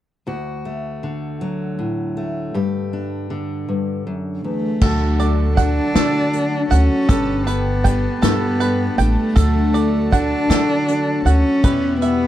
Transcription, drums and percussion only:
4.81 kick loud
4.81 crash medium
5.20 closed hi-hat medium
5.58 kick medium
5.58 closed hi-hat medium
5.95 snare loud
5.95 closed hi-hat medium
6.33 closed hi-hat medium
6.71 closed hi-hat medium
7.09 kick loud
7.09 closed hi-hat medium
7.47 closed hi-hat medium
7.85 kick medium
7.85 closed hi-hat medium
8.23 snare loud
8.23 closed hi-hat medium
8.61 closed hi-hat medium
8.99 closed hi-hat medium
9.37 kick loud
9.37 closed hi-hat medium
9.75 closed hi-hat medium
10.13 kick medium
10.13 closed hi-hat medium
10.50 snare loud
10.50 closed hi-hat medium
10.88 closed hi-hat medium
11.26 closed hi-hat medium
11.64 kick loud
11.64 closed hi-hat medium
12.02 closed hi-hat medium

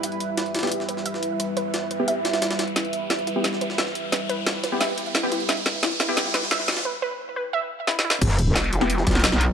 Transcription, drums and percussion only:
0.03 closed hi-hat medium
0.12 closed hi-hat soft
0.20 closed hi-hat medium
0.37 snare loud
0.37 closed hi-hat medium
0.46 closed hi-hat soft
0.55 snare medium
0.55 closed hi-hat medium
0.59 snare medium
0.59 closed hi-hat medium
0.63 snare medium
0.63 closed hi-hat medium
0.67 snare medium
0.67 closed hi-hat medium
0.72 closed hi-hat medium
0.80 snare soft
0.89 closed hi-hat medium
0.97 snare soft
1.06 closed hi-hat medium
1.14 snare soft
1.23 closed hi-hat medium
1.40 closed hi-hat medium
1.57 closed hi-hat medium
1.74 snare loud
1.74 closed hi-hat medium
1.91 closed hi-hat medium
2.08 closed hi-hat medium
2.25 snare loud
2.25 closed hi-hat medium
2.33 snare loud
2.33 closed hi-hat medium
2.42 snare loud
2.42 closed hi-hat medium
2.51 snare loud
2.51 closed hi-hat medium
2.59 snare loud
2.59 closed hi-hat medium
2.68 closed hi-hat soft
2.76 snare medium
2.76 closed hi-hat medium
2.85 closed hi-hat soft
2.93 closed hi-hat medium
3.10 snare soft
3.10 snare loud
3.10 closed hi-hat medium
3.19 closed hi-hat soft
3.27 closed hi-hat medium
3.44 snare medium
3.44 closed hi-hat medium
3.53 snare soft
3.61 closed hi-hat medium
3.70 snare medium
3.78 snare medium
3.78 snare loud
3.78 closed hi-hat medium
3.87 snare soft
3.95 closed hi-hat medium
4.12 snare medium
4.12 closed hi-hat medium
4.29 closed hi-hat medium
4.47 snare medium
4.47 snare loud
4.47 closed hi-hat medium
4.64 snare medium
4.64 closed hi-hat medium
4.81 snare medium
4.81 closed hi-hat medium
4.81 open hi-hat medium
4.98 closed hi-hat medium
5.06 closed hi-hat soft
5.15 snare medium
5.15 closed hi-hat medium
5.32 closed hi-hat medium
5.40 closed hi-hat soft
5.49 snare medium
5.49 closed hi-hat loud
5.49 closed hi-hat medium
5.57 closed hi-hat soft
5.66 snare medium
5.66 closed hi-hat medium
5.83 snare medium
5.83 snare loud
5.83 closed hi-hat medium
5.91 closed hi-hat soft
6.00 snare medium
6.00 closed hi-hat medium
6.17 snare medium
6.17 closed hi-hat medium
6.25 snare soft
6.34 snare medium
6.34 closed hi-hat medium
6.43 snare medium
6.51 snare loud
6.51 snare medium
6.51 closed hi-hat medium
6.60 snare soft
6.68 snare medium
6.68 closed hi-hat medium
6.72 snare medium
6.72 closed hi-hat medium
6.77 snare loud
6.77 closed hi-hat medium
7.87 snare medium
7.99 snare medium
8.10 snare loud
8.22 kick loud
8.22 closed hi-hat medium
8.22 closed hi-hat loud
8.22 crash loud
8.30 closed hi-hat soft
8.39 closed hi-hat medium
8.56 snare loud
8.56 closed hi-hat medium
8.64 closed hi-hat soft
8.73 closed hi-hat medium
8.81 snare soft
8.90 closed hi-hat medium
8.98 snare soft
9.07 kick loud
9.07 snare medium
9.07 closed hi-hat medium
9.11 snare medium
9.11 closed hi-hat medium
9.15 snare medium
9.15 snare soft
9.15 closed hi-hat medium
9.20 snare medium
9.20 closed hi-hat medium
9.24 snare loud
9.24 closed hi-hat loud
9.24 closed hi-hat medium
9.32 snare soft
9.41 closed hi-hat medium

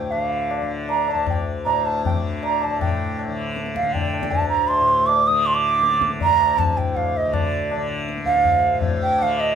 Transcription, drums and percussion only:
0.12 tabla na medium
0.51 tabla na medium
0.89 tabla na medium
1.08 tabla na medium
1.27 tabla na loud
1.27 tabla ge medium
1.66 tabla na medium
1.85 tabla na medium
2.05 tabla na medium
2.05 tabla ge medium
2.43 tabla na medium
2.62 tabla na medium
2.81 tabla na loud
2.81 tabla ge medium
3.19 tabla na medium
3.56 tabla te medium
3.66 tabla te medium
3.76 tabla ke medium
3.85 tabla te medium
3.95 tabla tin medium
3.95 tabla ge medium
4.14 tabla na medium
4.23 tabla ke medium
4.32 tabla tin medium
4.32 tabla ge medium
4.70 tabla na medium
5.09 tabla na medium
5.46 tabla na medium
5.83 tabla te medium
5.93 tabla te medium
6.01 tabla ke medium
6.11 tabla te medium
6.21 tabla tin medium
6.21 tabla ge medium
6.40 tabla na medium
6.59 tabla na medium
6.59 tabla ge medium
6.78 tabla ge soft
6.97 tabla na medium
6.97 tabla ge medium
7.34 tabla na loud
7.34 tabla ge loud
7.71 tabla na medium
8.08 tabla te medium
8.18 tabla te medium
8.27 tabla ke medium
8.35 tabla te medium
8.45 tabla tin medium
8.45 tabla ge medium
8.81 tabla tin medium
8.81 tabla ge medium
9.19 tabla na medium
9.37 tabla na medium

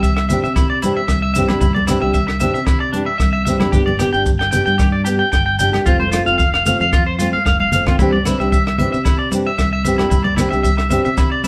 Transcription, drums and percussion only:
0.03 kick medium
0.03 maracas medium
0.17 cross-stick medium
0.30 closed hi-hat soft
0.30 low conga medium
0.30 maracas medium
0.45 maracas soft
0.56 kick medium
0.56 cross-stick medium
0.56 maracas medium
0.82 closed hi-hat medium
0.82 high conga medium
0.82 maracas medium
1.08 kick medium
1.08 cross-stick medium
1.08 maracas medium
1.35 closed hi-hat medium
1.35 low conga medium
1.35 maracas medium
1.49 cross-stick medium
1.49 high conga medium
1.49 maracas soft
1.61 kick medium
1.61 low conga medium
1.61 maracas medium
1.76 high conga medium
1.88 cross-stick medium
1.88 closed hi-hat medium
1.88 low conga medium
1.88 maracas medium
2.14 kick medium
2.14 maracas medium
2.28 cross-stick medium
2.40 closed hi-hat soft
2.40 low conga medium
2.40 maracas medium
2.55 maracas soft
2.67 kick medium
2.67 cross-stick medium
2.67 maracas medium
2.93 closed hi-hat soft
2.93 high conga medium
3.20 kick medium
3.20 cross-stick medium
3.20 maracas medium
3.47 closed hi-hat soft
3.47 low conga medium
3.47 maracas medium
3.60 cross-stick medium
3.60 high conga medium
3.60 maracas soft
3.73 kick medium
3.73 low conga medium
3.73 maracas medium
3.88 high conga medium
3.99 cross-stick medium
3.99 closed hi-hat soft
3.99 low conga medium
3.99 maracas medium
4.14 maracas soft
4.26 kick medium
4.26 maracas medium
4.41 cross-stick medium
4.52 closed hi-hat soft
4.52 low conga medium
4.52 maracas medium
4.67 maracas soft
4.79 kick medium
4.79 cross-stick medium
4.79 maracas medium
5.06 closed hi-hat medium
5.06 maracas medium
5.33 kick medium
5.33 cross-stick medium
5.33 maracas medium
5.59 closed hi-hat soft
5.59 low conga medium
5.59 maracas medium
5.73 cross-stick medium
5.73 high conga medium
5.73 maracas soft
5.86 kick medium
5.86 maracas medium
6.01 high conga medium
6.12 cross-stick medium
6.12 closed hi-hat medium
6.12 high conga medium
6.12 maracas medium
6.27 maracas soft
6.39 kick medium
6.39 maracas medium
6.54 cross-stick medium
6.66 closed hi-hat soft
6.66 low conga medium
6.66 maracas loud
6.81 maracas soft
6.93 kick medium
6.93 cross-stick medium
6.93 maracas medium
7.20 closed hi-hat soft
7.20 high conga medium
7.20 maracas medium
7.34 high conga soft
7.45 kick medium
7.45 cross-stick medium
7.45 high conga medium
7.45 maracas medium
7.60 high conga medium
7.72 closed hi-hat soft
7.72 low conga medium
7.72 maracas medium
7.86 kick medium
7.86 cross-stick medium
7.86 low conga medium
7.86 maracas soft
7.99 kick medium
7.99 low conga medium
7.99 maracas medium
8.13 high conga medium
8.25 cross-stick medium
8.25 closed hi-hat soft
8.25 low conga medium
8.25 maracas medium
8.41 maracas soft
8.52 kick medium
8.52 maracas medium
8.67 cross-stick medium
8.78 closed hi-hat soft
8.78 low conga medium
8.94 maracas soft
9.06 kick medium
9.06 cross-stick medium
9.06 maracas medium
9.31 closed hi-hat medium
9.31 high conga medium
9.31 maracas medium
9.59 kick medium
9.59 cross-stick medium
9.59 maracas medium
9.85 closed hi-hat medium
9.85 low conga medium
9.85 maracas loud
9.99 cross-stick medium
9.99 high conga medium
9.99 maracas soft
10.11 kick medium
10.11 low conga medium
10.11 maracas medium
10.25 high conga medium
10.37 cross-stick medium
10.37 closed hi-hat medium
10.37 low conga medium
10.37 maracas loud
10.53 maracas soft
10.64 kick medium
10.64 maracas medium
10.78 cross-stick medium
10.90 closed hi-hat soft
10.90 low conga medium
10.90 maracas medium
11.05 maracas soft
11.17 kick medium
11.17 cross-stick medium
11.17 maracas medium
11.44 closed hi-hat medium
11.44 high conga medium
11.44 maracas medium

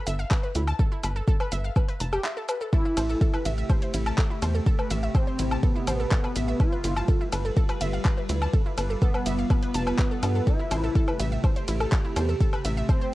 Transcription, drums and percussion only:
0.07 open hi-hat loud
0.07 shaker medium
0.19 shaker soft
0.31 kick loud
0.31 clap loud
0.31 low woodblock medium
0.31 shaker soft
0.43 shaker soft
0.55 open hi-hat loud
0.55 shaker medium
0.67 low woodblock medium
0.67 shaker soft
0.79 kick loud
0.79 shaker soft
0.92 shaker soft
1.03 open hi-hat loud
1.03 low woodblock medium
1.03 shaker medium
1.16 shaker soft
1.28 kick loud
1.28 shaker soft
1.40 low woodblock medium
1.40 shaker soft
1.52 open hi-hat loud
1.52 shaker medium
1.64 shaker soft
1.76 kick loud
1.76 low woodblock medium
1.76 shaker soft
1.88 open hi-hat medium
1.88 shaker soft
2.00 open hi-hat loud
2.00 shaker medium
2.13 low woodblock medium
2.13 shaker soft
2.24 clap loud
2.24 shaker soft
2.37 shaker soft
2.49 open hi-hat loud
2.49 low woodblock soft
2.49 shaker medium
2.61 shaker soft
2.73 kick loud
2.73 ride medium
2.73 shaker soft
2.85 shaker soft
2.97 open hi-hat loud
2.97 ride medium
2.97 low woodblock medium
2.97 shaker medium
3.09 shaker soft
3.21 kick loud
3.21 ride medium
3.21 shaker soft
3.34 low woodblock medium
3.34 shaker soft
3.45 open hi-hat loud
3.45 ride medium
3.45 shaker medium
3.58 shaker soft
3.70 kick loud
3.70 ride medium
3.70 low woodblock medium
3.70 shaker soft
3.82 open hi-hat medium
3.82 shaker soft
3.94 open hi-hat loud
3.94 ride medium
3.94 shaker medium
4.06 low woodblock soft
4.06 shaker soft
4.18 kick loud
4.18 clap loud
4.18 ride medium
4.18 shaker soft
4.30 shaker soft
4.42 open hi-hat loud
4.42 ride medium
4.42 low woodblock soft
4.42 shaker medium
4.55 shaker soft
4.66 kick loud
4.66 ride soft
4.66 shaker soft
4.79 low woodblock medium
4.79 shaker soft
4.91 open hi-hat loud
4.91 ride medium
4.91 shaker medium
5.03 shaker soft
5.15 kick loud
5.15 ride soft
5.15 low woodblock soft
5.15 shaker soft
5.27 shaker soft
5.39 open hi-hat loud
5.39 ride medium
5.39 shaker medium
5.51 low woodblock medium
5.51 shaker soft
5.63 kick loud
5.63 ride medium
5.63 shaker soft
5.75 shaker soft
5.87 open hi-hat loud
5.87 ride medium
5.87 low woodblock medium
5.87 shaker medium
6.00 shaker soft
6.11 kick loud
6.11 clap loud
6.11 ride soft
6.11 shaker soft
6.24 low woodblock medium
6.24 shaker soft
6.36 open hi-hat loud
6.36 ride medium
6.36 shaker medium
6.48 shaker soft
6.60 kick loud
6.60 ride soft
6.60 low woodblock soft
6.60 shaker soft
6.72 shaker soft
6.84 open hi-hat loud
6.84 ride medium
6.84 shaker medium
6.96 low woodblock medium
6.96 shaker soft
7.08 kick loud
7.08 ride medium
7.08 shaker soft
7.21 shaker soft
7.32 open hi-hat loud
7.32 ride medium
7.32 low woodblock medium
7.32 shaker medium
7.45 shaker soft
7.57 kick loud
7.57 ride soft
7.57 shaker soft
7.69 open hi-hat medium
7.69 low woodblock medium
7.69 shaker soft
7.81 open hi-hat loud
7.81 ride medium
7.81 shaker medium
7.93 shaker soft
8.05 kick loud
8.05 clap loud
8.05 ride medium
8.05 low woodblock medium
8.05 shaker soft
8.17 shaker soft
8.29 open hi-hat loud
8.29 ride medium
8.29 shaker medium
8.42 low woodblock medium
8.42 shaker soft
8.53 kick loud
8.53 ride soft
8.53 shaker soft
8.66 shaker soft
8.78 open hi-hat loud
8.78 ride medium
8.78 low woodblock medium
8.78 shaker medium
8.90 shaker soft
9.02 kick loud
9.02 ride soft
9.02 shaker soft
9.14 low woodblock medium
9.14 shaker soft
9.26 open hi-hat loud
9.26 ride medium
9.26 shaker medium
9.38 shaker soft
9.50 kick loud
9.50 ride medium
9.50 low woodblock medium
9.50 shaker soft
9.63 open hi-hat medium
9.63 shaker soft
9.74 open hi-hat loud
9.74 ride medium
9.74 shaker medium
9.87 low woodblock medium
9.87 shaker soft
9.99 kick loud
9.99 clap loud
9.99 ride medium
9.99 shaker soft
10.11 shaker soft
10.23 open hi-hat loud
10.23 ride medium
10.23 low woodblock medium
10.23 shaker medium
10.35 shaker soft
10.47 kick loud
10.47 ride medium
10.47 shaker soft
10.59 shaker soft
10.71 open hi-hat loud
10.71 ride medium
10.71 low woodblock medium
10.71 shaker medium
10.84 shaker soft
10.95 kick loud
10.95 ride soft
10.95 shaker soft
11.08 low woodblock medium
11.08 shaker soft
11.20 open hi-hat loud
11.20 ride medium
11.20 shaker medium
11.32 shaker soft
11.44 kick loud
11.44 ride medium
11.44 low woodblock medium
11.44 shaker soft
11.56 open hi-hat medium
11.56 shaker soft
11.68 open hi-hat loud
11.68 ride medium
11.68 shaker medium
11.80 low woodblock medium
11.80 shaker soft
11.92 kick loud
11.92 clap loud
11.92 ride medium
11.92 shaker soft
12.05 shaker soft
12.16 open hi-hat loud
12.16 ride medium
12.16 low woodblock medium
12.16 shaker medium
12.29 shaker soft
12.40 kick loud
12.40 ride medium
12.40 shaker soft
12.53 low woodblock medium
12.53 shaker soft
12.65 open hi-hat loud
12.65 ride medium
12.65 shaker medium
12.77 shaker soft
12.89 kick loud
12.89 ride medium
12.89 low woodblock medium
12.89 shaker soft
13.01 shaker soft

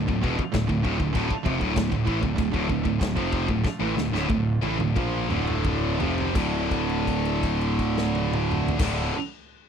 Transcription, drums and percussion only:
0.08 kick medium
0.24 kick medium
0.39 kick medium
0.53 kick loud
0.53 snare loud
0.53 china medium
0.69 kick medium
0.85 kick medium
1.00 kick medium
1.15 kick medium
1.15 china medium
1.30 kick medium
1.46 kick loud
1.61 kick medium
1.76 kick medium
1.76 snare loud
1.76 china medium
1.92 kick medium
2.07 kick medium
2.23 kick medium
2.38 kick loud
2.38 china medium
2.54 kick medium
2.69 kick medium
2.85 kick medium
3.01 kick loud
3.01 snare loud
3.01 china medium
3.17 kick medium
3.33 kick medium
3.48 kick medium
3.64 kick loud
3.64 snare medium
3.98 snare medium
4.15 snare medium
4.30 kick medium
4.30 high tom medium
4.63 high tom medium
4.80 mid tom medium
4.96 kick medium
4.96 mid tom loud
5.30 mid tom medium
5.47 mid tom medium
5.65 kick medium
5.65 mid tom loud
6.00 floor tom loud
6.18 floor tom medium
6.35 kick loud
6.35 crash medium
6.71 kick medium
6.71 crash medium
6.89 crash soft
7.07 kick medium
7.07 crash medium
7.25 crash medium
7.43 kick medium
7.43 crash medium
7.61 crash soft
7.79 kick medium
7.79 crash medium
7.98 snare loud
8.15 high tom medium
8.33 mid tom loud
8.51 mid tom loud
8.68 floor tom loud
8.79 kick loud
8.79 snare loud
8.79 crash loud

